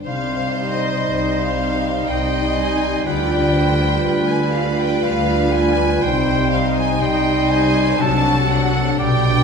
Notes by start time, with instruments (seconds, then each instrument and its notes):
Already playing: harp G2 D3 G3 D4 B4
0.05 double bass section C2, harp C3, cello section C3, french horn section G3 D#4, bassoon G3, clarinet D#4, oboe C5, violin section C5 F5, flute section F5
0.40 harp C4
0.57 viola section G3 D#4
0.74 harp G3, violin section D#5, flute section D#5
1.08 double bass section C2, cello section C3, harp D#4
1.41 harp C5, violin section F5, flute section F5
1.58 viola section G3 D#4
1.75 harp G4
2.07 double bass section C2, cello section C3, bassoon G3, clarinet D#4, harp C5, oboe C5, violin section D#5 G5, flute section G5
2.41 harp D#4
2.55 viola section G3 D#4, violin section G#5, flute section G#5
2.74 harp G3
3.05 double bass section D2, harp D3, cello section D3, bassoon G3, viola section G3 F4, french horn section F4, clarinet F4, oboe B4, violin section D5 G5, flute section G5
3.38 harp D4
3.55 viola section G3 F4, violin section C5
3.70 harp G3
4.04 double bass section D2, cello section D3, harp F4, violin section B4
4.28 violin section G#5, flute section G#5
4.38 harp B4
4.53 viola section G3 F4, violin section F5, flute section F5
4.71 harp G4
4.78 violin section G5, flute section G5
5.04 double bass section D2, cello section D3, bassoon G3, clarinet F4, harp B4, oboe B4, violin section F5, flute section F5
5.38 harp F4
5.53 viola section G3 F4, flute section G#5, violin section G#5
5.71 harp G3
6.03 double bass section C2, harp C3, cello section C3, french horn section G3 D#4, bassoon G3, clarinet D#4, oboe C5, violin section C5 G5, flute section G5
6.36 harp C4
6.51 viola section G3 D#4, violin section F5, flute section F5
6.76 violin section G#5, flute section G#5
7.01 double bass section C2, cello section C3, bassoon G3, harp D#4, clarinet D#4, oboe C5, violin section D#5 G5, flute section G5
7.32 harp C5
7.49 viola section G3 D#4, violin section G#5, flute section G#5
7.66 harp G4
7.99 double bass section C2, harp C3, cello section C3, french horn section F#3 D4, viola section F#3 D4, bassoon F#3, clarinet D4, violin section F#4 A5, oboe A4, flute section A5
8.33 harp F#3
8.50 viola section F#3 D4, flute section F#5, violin section F#5
8.65 harp D4 A4
8.98 double bass section B1, harp B2, cello section B2, bassoon G3, french horn section G3, clarinet D4, violin section G4 G5, oboe D5, flute section G5
9.31 harp B3